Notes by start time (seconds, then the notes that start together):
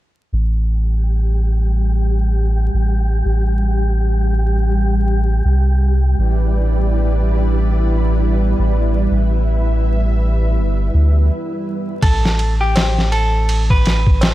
0.32 A1 G3 G4
2.74 A1
3.25 A1
5.45 C2
6.16 A1 G3 E4 B4 D5
8.59 A1
9.10 A1 E5
10.57 G1
10.94 D2
12.02 A1 A4, kick, ride
12.25 snare
12.39 ride
12.61 G4
12.76 snare, ride, tabla na
12.98 snare
13.12 A4, ride
13.49 ride
13.70 B4, kick
13.85 snare, ride
14.07 kick
14.21 snare, ride, tabla na